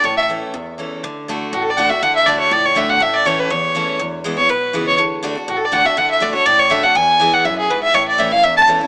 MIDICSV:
0, 0, Header, 1, 4, 480
1, 0, Start_track
1, 0, Tempo, 246812
1, 91, Time_signature, 4, 2, 24, 8
1, 17252, End_track
2, 0, Start_track
2, 0, Title_t, "Fiddle"
2, 0, Program_c, 0, 110
2, 91, Note_on_c, 0, 73, 84
2, 325, Note_off_c, 0, 73, 0
2, 336, Note_on_c, 0, 76, 94
2, 478, Note_off_c, 0, 76, 0
2, 2981, Note_on_c, 0, 66, 71
2, 3149, Note_on_c, 0, 69, 81
2, 3178, Note_off_c, 0, 66, 0
2, 3310, Note_on_c, 0, 74, 75
2, 3339, Note_off_c, 0, 69, 0
2, 3451, Note_on_c, 0, 78, 91
2, 3480, Note_off_c, 0, 74, 0
2, 3691, Note_on_c, 0, 76, 87
2, 3721, Note_off_c, 0, 78, 0
2, 3928, Note_on_c, 0, 78, 96
2, 3958, Note_off_c, 0, 76, 0
2, 4179, Note_off_c, 0, 78, 0
2, 4194, Note_on_c, 0, 76, 93
2, 4401, Note_on_c, 0, 74, 80
2, 4430, Note_off_c, 0, 76, 0
2, 4647, Note_off_c, 0, 74, 0
2, 4659, Note_on_c, 0, 73, 87
2, 4915, Note_on_c, 0, 74, 92
2, 4944, Note_off_c, 0, 73, 0
2, 5165, Note_on_c, 0, 73, 89
2, 5194, Note_off_c, 0, 74, 0
2, 5382, Note_on_c, 0, 76, 83
2, 5411, Note_off_c, 0, 73, 0
2, 5633, Note_on_c, 0, 78, 97
2, 5662, Note_off_c, 0, 76, 0
2, 5870, Note_on_c, 0, 76, 87
2, 5899, Note_off_c, 0, 78, 0
2, 6104, Note_on_c, 0, 74, 96
2, 6133, Note_off_c, 0, 76, 0
2, 6343, Note_on_c, 0, 73, 82
2, 6373, Note_off_c, 0, 74, 0
2, 6595, Note_on_c, 0, 71, 97
2, 6624, Note_off_c, 0, 73, 0
2, 6822, Note_on_c, 0, 73, 82
2, 6851, Note_off_c, 0, 71, 0
2, 7779, Note_off_c, 0, 73, 0
2, 8505, Note_on_c, 0, 73, 94
2, 8743, Note_on_c, 0, 71, 84
2, 8772, Note_off_c, 0, 73, 0
2, 9465, Note_off_c, 0, 71, 0
2, 9480, Note_on_c, 0, 73, 89
2, 9689, Note_off_c, 0, 73, 0
2, 10680, Note_on_c, 0, 66, 72
2, 10830, Note_on_c, 0, 69, 77
2, 10860, Note_off_c, 0, 66, 0
2, 10993, Note_on_c, 0, 74, 76
2, 11023, Note_off_c, 0, 69, 0
2, 11148, Note_on_c, 0, 78, 102
2, 11178, Note_off_c, 0, 74, 0
2, 11393, Note_on_c, 0, 76, 87
2, 11422, Note_off_c, 0, 78, 0
2, 11625, Note_on_c, 0, 78, 95
2, 11654, Note_off_c, 0, 76, 0
2, 11865, Note_off_c, 0, 78, 0
2, 11873, Note_on_c, 0, 76, 93
2, 12105, Note_on_c, 0, 74, 76
2, 12135, Note_off_c, 0, 76, 0
2, 12321, Note_off_c, 0, 74, 0
2, 12332, Note_on_c, 0, 73, 95
2, 12558, Note_on_c, 0, 74, 104
2, 12587, Note_off_c, 0, 73, 0
2, 12821, Note_on_c, 0, 73, 90
2, 12850, Note_off_c, 0, 74, 0
2, 13047, Note_on_c, 0, 76, 95
2, 13077, Note_off_c, 0, 73, 0
2, 13293, Note_on_c, 0, 78, 93
2, 13322, Note_off_c, 0, 76, 0
2, 13535, Note_on_c, 0, 80, 106
2, 13564, Note_off_c, 0, 78, 0
2, 14267, Note_on_c, 0, 78, 91
2, 14296, Note_off_c, 0, 80, 0
2, 14488, Note_on_c, 0, 76, 85
2, 14518, Note_off_c, 0, 78, 0
2, 14736, Note_off_c, 0, 76, 0
2, 14750, Note_on_c, 0, 68, 77
2, 14982, Note_on_c, 0, 71, 82
2, 15012, Note_off_c, 0, 68, 0
2, 15215, Note_off_c, 0, 71, 0
2, 15226, Note_on_c, 0, 76, 102
2, 15450, Note_on_c, 0, 73, 87
2, 15479, Note_off_c, 0, 76, 0
2, 15696, Note_off_c, 0, 73, 0
2, 15714, Note_on_c, 0, 74, 86
2, 15931, Note_on_c, 0, 76, 82
2, 15960, Note_off_c, 0, 74, 0
2, 16179, Note_on_c, 0, 77, 119
2, 16209, Note_off_c, 0, 76, 0
2, 16405, Note_on_c, 0, 76, 90
2, 16434, Note_off_c, 0, 77, 0
2, 16653, Note_off_c, 0, 76, 0
2, 16664, Note_on_c, 0, 81, 103
2, 16802, Note_off_c, 0, 81, 0
2, 17252, End_track
3, 0, Start_track
3, 0, Title_t, "Steel-string acoustic guitar"
3, 0, Program_c, 1, 25
3, 72, Note_on_c, 1, 45, 89
3, 552, Note_on_c, 1, 52, 57
3, 569, Note_on_c, 1, 57, 58
3, 582, Note_on_c, 1, 61, 67
3, 593, Note_on_c, 1, 64, 69
3, 997, Note_off_c, 1, 45, 0
3, 1020, Note_off_c, 1, 52, 0
3, 1028, Note_off_c, 1, 57, 0
3, 1035, Note_off_c, 1, 61, 0
3, 1040, Note_off_c, 1, 64, 0
3, 1044, Note_on_c, 1, 40, 87
3, 1517, Note_on_c, 1, 52, 56
3, 1533, Note_on_c, 1, 57, 61
3, 1543, Note_on_c, 1, 61, 64
3, 1550, Note_on_c, 1, 64, 60
3, 1964, Note_off_c, 1, 40, 0
3, 1983, Note_off_c, 1, 52, 0
3, 1991, Note_off_c, 1, 57, 0
3, 1996, Note_off_c, 1, 61, 0
3, 2000, Note_off_c, 1, 64, 0
3, 2019, Note_on_c, 1, 50, 85
3, 2472, Note_off_c, 1, 50, 0
3, 2495, Note_on_c, 1, 50, 88
3, 2511, Note_on_c, 1, 57, 97
3, 2514, Note_on_c, 1, 62, 94
3, 2524, Note_on_c, 1, 66, 92
3, 2953, Note_off_c, 1, 50, 0
3, 2961, Note_off_c, 1, 57, 0
3, 2962, Note_off_c, 1, 62, 0
3, 2967, Note_off_c, 1, 66, 0
3, 2972, Note_on_c, 1, 45, 89
3, 3453, Note_on_c, 1, 50, 90
3, 3465, Note_on_c, 1, 57, 92
3, 3479, Note_on_c, 1, 62, 91
3, 3483, Note_on_c, 1, 66, 92
3, 3673, Note_off_c, 1, 66, 0
3, 3691, Note_off_c, 1, 50, 0
3, 3696, Note_on_c, 1, 66, 60
3, 3697, Note_off_c, 1, 57, 0
3, 3704, Note_off_c, 1, 62, 0
3, 3739, Note_on_c, 1, 62, 53
3, 3888, Note_off_c, 1, 45, 0
3, 3925, Note_off_c, 1, 66, 0
3, 3942, Note_on_c, 1, 50, 92
3, 3946, Note_off_c, 1, 62, 0
3, 4388, Note_off_c, 1, 50, 0
3, 4412, Note_on_c, 1, 50, 91
3, 4427, Note_on_c, 1, 57, 91
3, 4437, Note_on_c, 1, 62, 103
3, 4453, Note_on_c, 1, 66, 98
3, 4871, Note_off_c, 1, 50, 0
3, 4879, Note_off_c, 1, 57, 0
3, 4884, Note_off_c, 1, 62, 0
3, 4887, Note_on_c, 1, 45, 89
3, 4892, Note_off_c, 1, 66, 0
3, 5351, Note_on_c, 1, 50, 92
3, 5363, Note_on_c, 1, 57, 94
3, 5377, Note_on_c, 1, 62, 93
3, 5388, Note_on_c, 1, 66, 91
3, 5806, Note_off_c, 1, 45, 0
3, 5821, Note_off_c, 1, 50, 0
3, 5827, Note_off_c, 1, 57, 0
3, 5834, Note_off_c, 1, 62, 0
3, 5839, Note_off_c, 1, 66, 0
3, 5841, Note_on_c, 1, 45, 90
3, 6327, Note_on_c, 1, 52, 85
3, 6338, Note_on_c, 1, 57, 92
3, 6351, Note_on_c, 1, 61, 94
3, 6366, Note_on_c, 1, 64, 105
3, 6762, Note_off_c, 1, 45, 0
3, 6789, Note_off_c, 1, 52, 0
3, 6794, Note_off_c, 1, 57, 0
3, 6801, Note_off_c, 1, 61, 0
3, 6808, Note_off_c, 1, 64, 0
3, 6816, Note_on_c, 1, 40, 91
3, 7288, Note_on_c, 1, 52, 90
3, 7304, Note_on_c, 1, 57, 88
3, 7318, Note_on_c, 1, 61, 91
3, 7326, Note_on_c, 1, 64, 84
3, 7729, Note_off_c, 1, 40, 0
3, 7749, Note_off_c, 1, 52, 0
3, 7757, Note_off_c, 1, 57, 0
3, 7764, Note_off_c, 1, 61, 0
3, 7768, Note_off_c, 1, 64, 0
3, 7768, Note_on_c, 1, 40, 89
3, 8250, Note_on_c, 1, 52, 90
3, 8257, Note_on_c, 1, 56, 90
3, 8272, Note_on_c, 1, 59, 103
3, 8283, Note_on_c, 1, 64, 107
3, 8468, Note_off_c, 1, 64, 0
3, 8489, Note_off_c, 1, 52, 0
3, 8492, Note_off_c, 1, 56, 0
3, 8492, Note_on_c, 1, 64, 58
3, 8500, Note_off_c, 1, 59, 0
3, 8533, Note_on_c, 1, 59, 51
3, 8685, Note_off_c, 1, 40, 0
3, 8722, Note_off_c, 1, 64, 0
3, 8736, Note_on_c, 1, 47, 89
3, 8742, Note_off_c, 1, 59, 0
3, 9205, Note_on_c, 1, 52, 82
3, 9218, Note_on_c, 1, 56, 95
3, 9234, Note_on_c, 1, 59, 94
3, 9235, Note_on_c, 1, 64, 85
3, 9649, Note_off_c, 1, 47, 0
3, 9666, Note_off_c, 1, 52, 0
3, 9673, Note_off_c, 1, 56, 0
3, 9681, Note_off_c, 1, 59, 0
3, 9682, Note_off_c, 1, 64, 0
3, 9692, Note_on_c, 1, 50, 86
3, 10141, Note_off_c, 1, 50, 0
3, 10164, Note_on_c, 1, 50, 94
3, 10176, Note_on_c, 1, 57, 91
3, 10184, Note_on_c, 1, 62, 94
3, 10201, Note_on_c, 1, 66, 102
3, 10389, Note_off_c, 1, 66, 0
3, 10405, Note_off_c, 1, 50, 0
3, 10411, Note_off_c, 1, 57, 0
3, 10412, Note_on_c, 1, 66, 59
3, 10415, Note_off_c, 1, 62, 0
3, 10449, Note_on_c, 1, 62, 47
3, 10641, Note_off_c, 1, 66, 0
3, 10657, Note_on_c, 1, 45, 88
3, 10660, Note_off_c, 1, 62, 0
3, 11119, Note_on_c, 1, 50, 87
3, 11130, Note_on_c, 1, 57, 92
3, 11139, Note_on_c, 1, 62, 91
3, 11148, Note_on_c, 1, 66, 87
3, 11342, Note_off_c, 1, 66, 0
3, 11363, Note_off_c, 1, 50, 0
3, 11365, Note_on_c, 1, 66, 61
3, 11368, Note_off_c, 1, 57, 0
3, 11373, Note_off_c, 1, 62, 0
3, 11403, Note_on_c, 1, 62, 51
3, 11568, Note_off_c, 1, 45, 0
3, 11597, Note_off_c, 1, 66, 0
3, 11611, Note_on_c, 1, 50, 85
3, 11616, Note_off_c, 1, 62, 0
3, 12040, Note_off_c, 1, 50, 0
3, 12064, Note_on_c, 1, 50, 95
3, 12082, Note_on_c, 1, 57, 91
3, 12095, Note_on_c, 1, 62, 93
3, 12104, Note_on_c, 1, 66, 99
3, 12289, Note_off_c, 1, 66, 0
3, 12312, Note_on_c, 1, 66, 58
3, 12314, Note_off_c, 1, 50, 0
3, 12324, Note_off_c, 1, 57, 0
3, 12330, Note_off_c, 1, 62, 0
3, 12353, Note_on_c, 1, 62, 51
3, 12551, Note_off_c, 1, 66, 0
3, 12563, Note_on_c, 1, 45, 94
3, 12571, Note_off_c, 1, 62, 0
3, 13025, Note_on_c, 1, 50, 91
3, 13043, Note_on_c, 1, 57, 92
3, 13058, Note_on_c, 1, 62, 89
3, 13068, Note_on_c, 1, 66, 98
3, 13266, Note_off_c, 1, 66, 0
3, 13275, Note_off_c, 1, 50, 0
3, 13284, Note_off_c, 1, 57, 0
3, 13289, Note_on_c, 1, 66, 58
3, 13291, Note_off_c, 1, 62, 0
3, 13326, Note_on_c, 1, 62, 53
3, 13481, Note_off_c, 1, 45, 0
3, 13519, Note_off_c, 1, 66, 0
3, 13519, Note_on_c, 1, 40, 88
3, 13537, Note_off_c, 1, 62, 0
3, 13994, Note_on_c, 1, 52, 89
3, 14011, Note_on_c, 1, 56, 90
3, 14023, Note_on_c, 1, 59, 91
3, 14037, Note_on_c, 1, 64, 98
3, 14439, Note_off_c, 1, 40, 0
3, 14460, Note_off_c, 1, 52, 0
3, 14468, Note_off_c, 1, 56, 0
3, 14474, Note_off_c, 1, 59, 0
3, 14481, Note_off_c, 1, 64, 0
3, 14493, Note_on_c, 1, 42, 90
3, 14949, Note_off_c, 1, 42, 0
3, 14984, Note_on_c, 1, 44, 88
3, 15434, Note_off_c, 1, 44, 0
3, 15441, Note_on_c, 1, 45, 89
3, 15907, Note_on_c, 1, 52, 84
3, 15917, Note_on_c, 1, 57, 84
3, 15938, Note_on_c, 1, 61, 94
3, 15942, Note_on_c, 1, 64, 101
3, 16134, Note_off_c, 1, 64, 0
3, 16155, Note_off_c, 1, 52, 0
3, 16157, Note_on_c, 1, 64, 66
3, 16160, Note_off_c, 1, 57, 0
3, 16170, Note_off_c, 1, 61, 0
3, 16192, Note_on_c, 1, 61, 48
3, 16358, Note_off_c, 1, 45, 0
3, 16392, Note_off_c, 1, 64, 0
3, 16408, Note_on_c, 1, 40, 93
3, 16409, Note_off_c, 1, 61, 0
3, 16869, Note_on_c, 1, 52, 80
3, 16882, Note_on_c, 1, 57, 96
3, 16900, Note_on_c, 1, 61, 83
3, 16908, Note_on_c, 1, 64, 98
3, 17109, Note_off_c, 1, 64, 0
3, 17115, Note_off_c, 1, 52, 0
3, 17122, Note_off_c, 1, 57, 0
3, 17131, Note_off_c, 1, 61, 0
3, 17132, Note_on_c, 1, 64, 60
3, 17170, Note_on_c, 1, 61, 53
3, 17252, Note_off_c, 1, 40, 0
3, 17252, Note_off_c, 1, 61, 0
3, 17252, Note_off_c, 1, 64, 0
3, 17252, End_track
4, 0, Start_track
4, 0, Title_t, "Upright bass"
4, 0, Program_c, 2, 32
4, 78, Note_on_c, 2, 33, 84
4, 797, Note_off_c, 2, 33, 0
4, 1049, Note_on_c, 2, 40, 83
4, 1765, Note_off_c, 2, 40, 0
4, 2007, Note_on_c, 2, 38, 89
4, 2724, Note_off_c, 2, 38, 0
4, 2964, Note_on_c, 2, 33, 83
4, 3682, Note_off_c, 2, 33, 0
4, 3934, Note_on_c, 2, 38, 87
4, 4292, Note_off_c, 2, 38, 0
4, 4403, Note_on_c, 2, 38, 84
4, 4817, Note_off_c, 2, 38, 0
4, 4890, Note_on_c, 2, 37, 87
4, 5301, Note_off_c, 2, 37, 0
4, 5379, Note_on_c, 2, 35, 86
4, 5786, Note_off_c, 2, 35, 0
4, 5847, Note_on_c, 2, 33, 87
4, 6564, Note_off_c, 2, 33, 0
4, 6814, Note_on_c, 2, 40, 90
4, 7528, Note_off_c, 2, 40, 0
4, 7788, Note_on_c, 2, 28, 82
4, 8496, Note_off_c, 2, 28, 0
4, 8738, Note_on_c, 2, 35, 80
4, 9145, Note_off_c, 2, 35, 0
4, 9211, Note_on_c, 2, 37, 83
4, 9621, Note_off_c, 2, 37, 0
4, 9685, Note_on_c, 2, 38, 85
4, 10402, Note_off_c, 2, 38, 0
4, 10662, Note_on_c, 2, 33, 90
4, 11372, Note_off_c, 2, 33, 0
4, 11630, Note_on_c, 2, 38, 91
4, 12336, Note_off_c, 2, 38, 0
4, 12569, Note_on_c, 2, 33, 87
4, 13283, Note_off_c, 2, 33, 0
4, 13519, Note_on_c, 2, 40, 91
4, 14236, Note_off_c, 2, 40, 0
4, 14488, Note_on_c, 2, 35, 87
4, 15202, Note_off_c, 2, 35, 0
4, 15441, Note_on_c, 2, 33, 90
4, 16157, Note_off_c, 2, 33, 0
4, 16407, Note_on_c, 2, 28, 85
4, 17121, Note_off_c, 2, 28, 0
4, 17252, End_track
0, 0, End_of_file